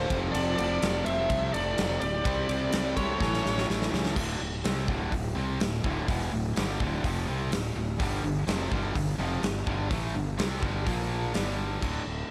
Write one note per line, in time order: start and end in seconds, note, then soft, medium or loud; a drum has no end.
0.00 0.19 A4 medium
0.00 0.18 C5 medium
0.09 0.30 F1 medium
0.09 0.80 F2 loud
0.09 0.80 C3 medium
0.09 0.81 F3 loud
0.09 kick loud
0.09 ride medium
0.32 0.54 F1 loud
0.32 0.55 A4 medium
0.32 0.55 D5 loud
0.32 ride loud
0.56 0.78 F1 medium
0.56 1.02 A4 medium
0.56 1.05 D5 loud
0.56 ride medium
0.81 1.02 F1 loud
0.81 1.99 F2 medium
0.81 2.00 C3 medium
0.81 2.00 F3 medium
0.81 snare loud
0.81 ride loud
1.05 1.26 F1 medium
1.05 1.50 C5 medium
1.05 1.53 E5 loud
1.05 ride medium
1.30 1.50 C2 loud
1.30 kick loud
1.30 ride medium
1.53 1.74 F1 medium
1.53 1.98 A4 medium
1.53 1.99 D5 medium
1.53 ride medium
1.77 1.98 F1 medium
1.77 2.00 F2 medium
1.77 2.00 C3 medium
1.77 2.01 F3 medium
1.77 snare loud
1.77 ride loud
2.00 2.22 D1 loud
2.00 2.93 G4 medium
2.00 2.92 D5 medium
2.00 ride medium
2.24 2.45 C2 loud
2.24 2.95 C3 loud
2.24 2.95 G3 medium
2.24 2.94 C4 loud
2.24 kick loud
2.24 ride loud
2.49 2.69 C2 medium
2.49 ride medium
2.73 2.94 C2 medium
2.73 snare loud
2.73 ride loud
2.95 3.17 C2 medium
2.95 3.18 C3 medium
2.95 3.19 G3 medium
2.95 3.19 C4 medium
2.95 3.64 A4 medium
2.95 3.64 C#5 medium
2.95 kick medium
2.95 ride medium
3.19 3.41 A1 medium
3.19 3.90 A2 medium
3.19 3.91 E3 medium
3.19 3.90 A3 loud
3.19 kick loud
3.19 snare medium
3.34 snare medium
3.46 3.65 A1 medium
3.46 snare medium
3.58 snare medium
3.70 3.89 A1 medium
3.70 snare medium
3.82 snare medium
3.91 4.13 C#2 medium
3.91 4.15 A2 medium
3.91 4.15 E3 medium
3.91 4.14 A3 medium
3.91 snare loud
4.05 snare loud
4.16 4.39 D1 loud
4.16 4.39 D2 loud
4.16 4.39 A2 loud
4.16 4.40 D3 loud
4.16 kick loud
4.16 crash loud
4.40 4.63 D1 medium
4.40 4.59 D2 medium
4.40 4.60 A2 medium
4.64 4.87 C2 loud
4.64 4.87 C3 medium
4.64 4.87 G3 loud
4.64 4.88 C4 loud
4.64 snare loud
4.64 open hi-hat medium
4.88 5.10 D1 medium
4.88 5.10 D2 medium
4.88 5.10 A2 medium
4.88 5.12 D3 medium
4.88 kick loud
5.11 5.34 D1 medium
5.11 5.31 D2 medium
5.11 5.31 A2 medium
5.11 kick medium
5.11 open hi-hat medium
5.35 5.58 C2 medium
5.35 5.59 C3 loud
5.35 5.59 G3 medium
5.35 5.59 C4 loud
5.60 5.83 D1 medium
5.60 5.79 D2 medium
5.60 5.79 A2 medium
5.60 snare loud
5.60 open hi-hat medium
5.83 6.07 D1 medium
5.83 6.07 D2 medium
5.83 6.07 A2 medium
5.83 6.07 D3 loud
5.83 kick loud
6.08 6.30 E1 loud
6.08 6.31 E2 loud
6.08 6.31 B2 loud
6.08 6.31 E3 loud
6.08 kick loud
6.08 open hi-hat medium
6.32 6.55 D1 medium
6.32 6.51 D2 medium
6.32 6.51 A2 medium
6.56 6.79 G1 loud
6.56 6.79 G2 loud
6.56 6.79 D3 loud
6.56 6.79 G3 loud
6.56 snare loud
6.56 open hi-hat medium
6.80 7.03 D1 medium
6.80 7.03 D2 medium
6.80 7.03 A2 medium
6.80 7.04 D3 medium
6.80 kick loud
7.04 7.26 F1 loud
7.04 7.27 F2 loud
7.04 7.26 C3 loud
7.04 7.27 F3 loud
7.04 kick loud
7.04 open hi-hat medium
7.28 7.50 C2 loud
7.28 7.51 C3 medium
7.28 7.51 G3 medium
7.28 7.51 C4 loud
7.52 7.74 D1 medium
7.52 7.71 D2 medium
7.52 7.71 A2 medium
7.52 snare loud
7.52 open hi-hat medium
7.76 7.98 D1 medium
7.76 7.95 D2 medium
7.76 7.95 A2 medium
7.99 8.22 G1 loud
7.99 8.22 G2 loud
7.99 8.22 D3 loud
7.99 8.23 G3 loud
7.99 kick loud
7.99 open hi-hat medium
8.23 8.46 G1 medium
8.23 8.42 G2 medium
8.23 8.42 D3 medium
8.47 8.69 F1 medium
8.47 8.70 F2 medium
8.47 8.70 C3 loud
8.47 8.70 F3 loud
8.47 snare loud
8.47 open hi-hat medium
8.70 8.94 G1 medium
8.70 8.94 G2 medium
8.70 8.94 D3 loud
8.70 8.94 G3 loud
8.70 kick loud
8.95 9.18 G1 medium
8.95 9.14 G2 medium
8.95 9.14 D3 medium
8.95 kick medium
8.95 open hi-hat medium
9.18 9.41 F1 medium
9.18 9.41 F2 medium
9.18 9.42 C3 loud
9.18 9.42 F3 loud
9.42 9.65 G1 medium
9.42 9.61 G2 medium
9.42 9.62 D3 medium
9.42 snare loud
9.42 open hi-hat medium
9.66 9.89 G1 loud
9.66 9.89 G2 loud
9.66 9.89 D3 medium
9.66 9.90 G3 loud
9.66 kick loud
9.89 10.13 A1 medium
9.89 10.13 A2 medium
9.89 10.13 E3 loud
9.89 10.14 A3 loud
9.89 kick loud
9.89 open hi-hat medium
10.14 10.37 G1 medium
10.14 10.33 G2 medium
10.14 10.34 D3 medium
10.37 10.61 C2 loud
10.37 10.61 C3 loud
10.37 10.61 G3 loud
10.37 10.62 C4 loud
10.37 snare loud
10.37 open hi-hat medium
10.62 10.85 G1 medium
10.62 10.85 G2 medium
10.62 10.86 D3 loud
10.62 10.86 G3 loud
10.62 kick loud
10.86 11.31 A#1 medium
10.86 11.33 A#2 medium
10.86 11.33 F3 loud
10.86 11.34 A#3 loud
10.86 kick medium
10.86 open hi-hat medium
11.33 11.79 G1 medium
11.33 11.81 G2 medium
11.33 11.81 D3 medium
11.33 11.82 G3 loud
11.33 snare loud
11.33 open hi-hat medium
11.82 11.98 D1 medium
11.82 12.01 D2 medium
11.82 12.01 A2 medium
11.82 12.02 D3 medium
11.82 kick loud
11.82 crash medium
12.07 12.22 D1 medium